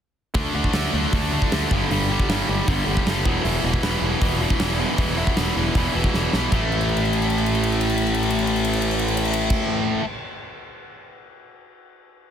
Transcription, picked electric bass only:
0.35 0.47 D2 medium
0.55 0.67 D2 medium
0.73 0.85 D2 medium
0.93 1.05 D2 medium
1.13 1.37 D2 medium
1.52 1.64 D2 medium
1.71 1.83 G1 medium
1.90 2.14 G1 medium
2.29 2.41 G1 medium
2.49 2.61 G1 medium
2.68 2.80 G1 medium
2.87 2.99 G1 medium
3.06 3.25 F#1 medium
3.25 3.37 E1 medium
3.45 3.56 E1 medium
3.64 3.76 E1 medium
3.82 3.94 E1 medium
4.01 4.14 E1 medium
4.22 4.45 E1 medium
4.60 4.84 E1 medium
4.98 5.22 E1 medium
5.38 5.49 E1 medium
5.57 5.68 E1 medium
5.75 5.87 E1 medium
5.95 6.07 E1 medium
6.15 6.26 E1 medium
6.34 6.45 B1 medium
6.52 9.54 A1 medium

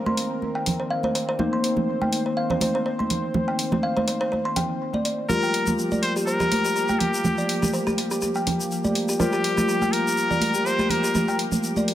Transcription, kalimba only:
0.06 0.12 C6 medium
0.55 0.65 G5 medium
0.80 0.86 C5 medium
0.90 1.03 F5 medium
1.04 1.14 C5 medium
1.15 1.27 C5 medium
1.29 1.38 C5 medium
1.40 1.47 C5 medium
1.53 1.59 C6 medium
2.02 2.11 G5 medium
2.26 2.32 C5 medium
2.37 2.49 F5 medium
2.51 2.60 C5 medium
2.62 2.74 C5 medium
2.75 2.85 C5 medium
2.86 2.93 C5 medium
2.99 3.05 C6 medium
3.48 3.58 G5 medium
3.72 3.78 C5 medium
3.83 3.95 F5 medium
3.97 4.07 C5 medium
4.08 4.20 C5 medium
4.21 4.31 C5 medium
4.32 4.39 C5 medium
4.45 4.51 C6 medium
4.56 4.69 G5 medium
4.94 5.00 D5 medium
5.05 5.17 D5 medium
5.30 5.37 G4 medium
5.43 5.49 G5 medium
5.92 6.02 D5 medium
6.16 6.22 G4 medium
6.27 6.39 C5 medium
6.40 6.50 G4 medium
6.52 6.64 G4 medium
6.65 6.75 G4 medium
6.76 6.83 G4 medium
6.89 6.95 G5 medium
7.38 7.48 D5 medium
7.62 7.68 G4 medium
7.73 7.86 C5 medium
7.87 7.97 G4 medium
7.98 8.10 G4 medium
8.11 8.21 G4 loud
8.22 8.29 G4 medium
8.36 8.42 G5 medium
8.84 8.94 D5 medium
9.09 9.15 G4 medium
9.20 9.32 C5 medium
9.33 9.43 G4 medium
9.44 9.56 G4 medium
9.57 9.67 G4 loud
9.68 9.76 G4 medium
9.82 9.88 G5 medium
10.31 10.41 D5 medium
10.55 10.61 G4 medium
10.66 10.78 C5 medium
10.80 10.89 G4 medium
10.90 11.02 G4 medium
11.04 11.14 G4 medium
11.15 11.22 G4 medium
11.28 11.34 G5 medium
11.77 11.87 D5 medium

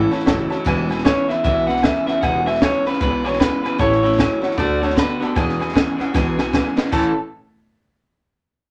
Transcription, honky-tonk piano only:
0.11 0.21 C#5 medium
0.11 0.21 E5 medium
0.11 0.21 A5 medium
0.26 0.41 C#5 loud
0.26 0.41 E5 loud
0.26 0.42 A5 loud
0.49 0.59 C#5 medium
0.49 0.60 E5 medium
0.49 0.60 A5 loud
0.66 0.81 B4 loud
0.66 0.81 E5 loud
0.66 0.81 G#5 loud
0.89 0.99 B4 medium
0.89 0.99 E5 medium
0.89 1.00 G#5 medium
1.05 1.20 B4 loud
1.05 1.20 E5 loud
1.05 1.20 G#5 loud
1.29 1.38 B4 medium
1.29 1.38 E5 medium
1.29 1.39 B5 medium
1.44 1.59 B4 medium
1.44 1.59 E5 medium
1.44 1.59 F#5 medium
1.67 1.77 B4 medium
1.67 1.77 E5 medium
1.67 1.77 B5 medium
1.82 1.97 B4 loud
1.82 1.97 E5 medium
1.82 1.98 G#5 loud
2.06 2.16 B4 medium
2.06 2.16 E5 medium
2.06 2.17 F#5 medium
2.23 2.37 B4 loud
2.23 2.37 E5 medium
2.23 2.37 G#5 loud
2.46 2.56 B4 medium
2.46 2.56 E5 medium
2.46 2.56 G#5 medium
2.62 2.76 B4 loud
2.62 2.77 E5 medium
2.62 2.77 G#5 loud
2.86 2.95 B4 medium
2.86 2.95 E5 medium
2.86 2.96 B5 medium
3.01 3.16 B4 medium
3.01 3.16 E5 medium
3.01 3.16 B5 medium
3.25 3.34 B4 medium
3.25 3.34 E5 medium
3.25 3.35 G#5 medium
3.40 3.55 B4 medium
3.40 3.55 E5 medium
3.40 3.55 B5 loud
3.64 3.73 B4 medium
3.64 3.74 E5 medium
3.64 3.74 G#5 medium
3.79 3.93 C#5 loud
3.79 3.94 E5 medium
3.79 3.94 A5 loud
4.03 4.12 C#5 medium
4.03 4.13 E5 medium
4.03 4.13 B5 medium
4.19 4.33 C#5 loud
4.19 4.33 E5 medium
4.19 4.33 G#5 loud
4.42 4.51 C#5 medium
4.42 4.52 E5 medium
4.42 4.52 F#5 loud
4.58 4.72 D5 medium
4.58 4.73 F#5 medium
4.58 4.73 A5 medium
4.82 4.91 D5 medium
4.82 4.91 F#5 medium
4.82 4.91 A5 medium
4.97 5.11 D5 loud
4.97 5.11 F#5 medium
4.97 5.12 A5 loud
5.21 5.30 D5 medium
5.21 5.30 F#5 medium
5.21 5.30 B5 medium
5.35 5.50 B4 loud
5.35 5.50 E5 medium
5.35 5.50 G#5 loud
5.61 5.69 B4 medium
5.61 5.69 E5 medium
5.61 5.69 G#5 medium
5.75 5.89 B4 medium
5.75 5.89 E5 medium
5.75 5.90 G#5 loud
5.99 6.08 B4 medium
5.99 6.08 E5 medium
5.99 6.09 F#5 loud
6.14 6.28 B4 medium
6.14 6.28 E5 medium
6.14 6.29 G#5 loud
6.39 6.47 B4 medium
6.39 6.48 E5 medium
6.39 6.48 G#5 medium
6.54 6.68 B4 loud
6.54 6.68 E5 loud
6.54 6.68 G#5 loud
6.77 6.86 B4 medium
6.77 6.86 E5 medium
6.77 6.86 B5 medium
6.92 7.14 C#5 medium
6.92 7.14 E5 medium
6.92 7.14 A5 loud

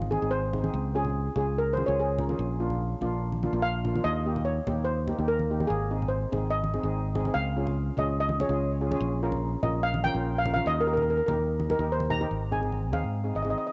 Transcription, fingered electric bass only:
0.00 0.15 G#1 medium
0.22 0.67 G#1 medium
0.74 1.28 C#2 loud
1.36 1.81 C#2 medium
1.88 2.33 C#2 medium
2.39 2.93 A#1 loud
3.01 3.46 A#1 medium
3.53 3.98 A#1 loud
4.05 4.59 D#2 loud
4.67 5.12 D#2 medium
5.19 5.64 D#2 medium
5.70 6.24 G#1 loud
6.32 6.77 G#1 medium
6.83 7.29 G#1 loud
7.35 7.89 C#2 loud
7.97 8.42 C#2 medium
8.49 8.94 C#2 loud
9.01 9.55 A#1 loud
9.63 10.08 A#1 loud
10.15 10.60 A#1 loud
10.66 11.20 D#2 loud
11.29 11.73 D#2 medium
11.79 12.24 D#2 loud
12.31 12.93 G#1 loud
12.93 13.02 D#2 medium
13.04 13.31 G#2 medium
13.35 13.53 G#1 medium

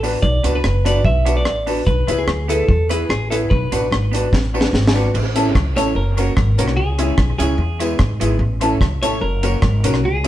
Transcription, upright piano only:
0.03 0.18 D4 medium
0.03 0.18 F#4 medium
0.03 0.18 B4 loud
0.44 0.58 D4 medium
0.44 0.59 F#4 medium
0.44 0.59 B4 loud
0.84 0.99 D4 medium
0.84 1.00 F#4 medium
0.84 1.00 B4 medium
1.04 1.08 F#4 soft
1.04 1.08 B4 soft
1.25 1.40 D4 medium
1.25 1.40 F#4 medium
1.25 1.41 B4 loud
1.66 1.81 D4 medium
1.66 1.81 F#4 medium
1.66 1.82 B4 loud
2.08 2.22 E4 loud
2.08 2.23 G#4 medium
2.08 2.23 B4 loud
2.49 2.63 E4 medium
2.49 2.64 G#4 medium
2.49 2.64 B4 medium
2.69 2.73 G#4 soft
2.69 2.73 B4 soft
2.90 3.04 E4 medium
2.90 3.05 G#4 medium
2.90 3.05 B4 medium
3.31 3.45 E4 medium
3.31 3.46 G#4 medium
3.31 3.46 B4 loud
3.72 3.86 D4 medium
3.72 3.87 F#4 medium
3.72 3.87 B4 loud
4.13 4.27 D4 medium
4.13 4.28 F#4 medium
4.13 4.28 B4 medium
4.33 4.37 F#4 soft
4.33 4.37 B4 soft
4.54 4.68 D4 medium
4.54 4.68 F#4 medium
4.54 4.69 B4 loud
4.94 5.08 D4 medium
4.94 5.09 F#4 medium
4.94 5.09 B4 loud
5.35 5.50 C#4 loud
5.35 5.50 E4 medium
5.35 5.50 A4 loud
5.76 5.90 C#4 medium
5.76 5.91 E4 medium
5.76 5.91 A4 loud
5.96 6.00 F#4 soft
5.96 6.00 A#4 soft
6.17 6.31 C#4 medium
6.17 6.32 F#4 medium
6.17 6.32 A#4 medium
6.58 6.72 C#4 medium
6.58 6.72 F#4 medium
6.58 6.73 A#4 loud
6.99 7.13 C#4 loud
6.99 7.13 E4 medium
6.99 7.14 G#4 loud
7.39 7.53 C#4 medium
7.39 7.54 E4 medium
7.39 7.54 G#4 loud
7.59 7.63 E4 soft
7.59 7.63 G#4 soft
7.80 7.95 B3 medium
7.80 7.95 E4 medium
7.80 7.95 G#4 medium
8.20 8.35 B3 medium
8.20 8.36 E4 medium
8.20 8.36 G#4 loud
8.61 8.76 C#4 medium
8.61 8.76 E4 loud
8.61 8.77 A4 loud
9.02 9.17 C#4 medium
9.02 9.17 E4 medium
9.02 9.17 A4 loud
9.21 9.26 F#4 soft
9.21 9.26 A#4 soft
9.42 9.58 C#4 medium
9.42 9.58 F#4 medium
9.42 9.58 A#4 medium
9.84 9.99 C#4 medium
9.84 9.99 F#4 medium
9.84 9.99 A#4 loud
10.24 10.28 C#4 loud

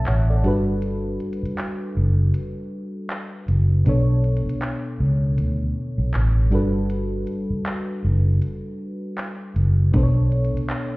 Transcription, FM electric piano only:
0.00 0.40 B2 medium
0.00 0.40 B3 medium
0.00 0.41 D4 medium
0.00 0.47 E5 medium
0.00 0.46 A5 medium
0.07 0.28 C#5 medium
0.07 0.28 F#5 medium
0.29 0.45 A4 medium
0.29 0.65 D5 medium
0.43 3.44 G3 medium
0.43 3.44 D4 medium
0.43 3.45 F#4 medium
0.43 3.45 A4 medium
0.43 3.46 B4 medium
3.85 6.47 B2 medium
3.85 6.48 B3 medium
3.85 6.48 D4 medium
3.85 6.49 A4 medium
3.89 6.50 C#5 medium
6.51 9.51 G3 medium
6.51 9.52 D4 medium
6.51 9.52 F#4 medium
6.51 9.53 A4 medium
6.51 9.53 B4 medium
9.92 10.97 B2 medium
9.92 10.97 B3 medium
9.92 10.97 D4 medium
9.92 10.97 A4 medium
9.97 10.03 C5 medium
10.03 10.97 C#5 medium

